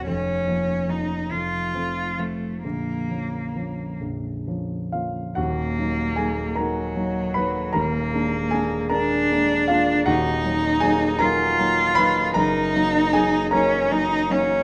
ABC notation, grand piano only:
X:1
M:6/8
L:1/8
Q:3/8=51
K:Fphr
V:1 name="Grand piano"
z6 | z4 z [Ff] | [K:Ebm] [Gg]2 [Aa] [Bb]2 [cc'] | [Bb]2 [Aa] [Bb]2 [Ff] |
[Gg]2 [Aa] [Bb]2 [cc'] | [Bb]2 [Aa] [Bb]3 |]
V:2 name="Grand piano"
[F,,,F,,] [F,B,D] [F,B,D] [F,,,F,,] [F,=A,C] [F,A,C] | [B,,,,B,,,] [F,B,D] [F,B,D] [B,,,,B,,,] [F,B,D] [F,B,D] | [K:Ebm] [E,,,E,,] [G,B,E] [G,B,E] [G,B,E] [G,B,E] [G,B,E] | [E,,,E,,] [A,B,=D] [A,B,D] [A,B,D] [A,B,D] [A,B,D] |
[E,,,E,,] [G,B,E] [G,B,E] [G,B,E] [G,B,E] [G,B,E] | [G,,,G,,] [G,B,E] [G,B,E] [G,B,E] [G,B,E] [G,B,E] |]